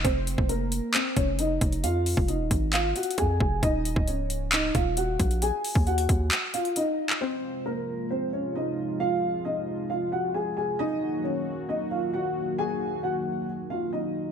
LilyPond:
<<
  \new Staff \with { instrumentName = "Grand piano" } { \time 4/4 \key f \phrygian \tempo 4 = 134 <c' c''>4 <bes bes'>4 <c' c''>8 <des' des''>8 <ees' ees''>4 | <f' f''>4 <ees' ees''>4 <f' f''>8 <ges' ges''>8 <aes' aes''>8 <aes' aes''>8 | <ees' ees''>4 <des' des''>4 <ees' ees''>8 <f' f''>8 <ges' ges''>4 | <aes' aes''>4 <ges' ges''>4 r8 <f' f''>8 <ees' ees''>4 |
<c' c''>4 <bes bes'>4 <c' c''>8 <des' des''>8 <ees' ees''>4 | <f' f''>4 <ees' ees''>4 <f' f''>8 <ges' ges''>8 <aes' aes''>8 <aes' aes''>8 | <ees' ees''>4 <des' des''>4 <ees' ees''>8 <f' f''>8 <ges' ges''>4 | <aes' aes''>4 <ges' ges''>4 r8 <f' f''>8 <ees' ees''>4 | }
  \new Staff \with { instrumentName = "Analog synth pad" } { \clef bass \time 4/4 \key f \phrygian r1 | r1 | r1 | r1 |
<c f aes f'>1~ | <c f aes f'>1 | <ees ges bes ges'>1~ | <ees ges bes ges'>1 | }
  \new Staff \with { instrumentName = "808-style bass" } { \clef bass \time 4/4 \key f \phrygian f,,8. f,,4 r8. f,,4 f,,8 | f,8. f,,8 ees,,16 aes,,4 r8 f,8 f,,8 | ees,,8. des,,4.~ des,,16 ees,,4 bes,,8~ | bes,,16 r8 ees,8. ees,8 r2 |
r1 | r1 | r1 | r1 | }
  \new DrumStaff \with { instrumentName = "Drums" } \drummode { \time 4/4 <hh bd>8 hh16 bd16 hh8 hh8 <hc hh>8 <hh bd>8 hh8 <hh bd>16 hh16 | hh8 hho16 bd16 hh8 <hh bd>8 \tuplet 3/2 { <hc hh>16 r16 r16 hh16 hh16 hh16 } <hh bd>8 bd8 | <hh bd>8 hh16 bd16 hh8 hh8 <hc hh>8 <hh bd>8 hh8 <hh bd>16 hh16 | hh8 hho16 bd16 hh16 hh16 <hh bd>8 <hc hh>8 hh16 hh16 hh8. hc16 |
r4 r4 r4 r4 | r4 r4 r4 r4 | r4 r4 r4 r4 | r4 r4 r4 r4 | }
>>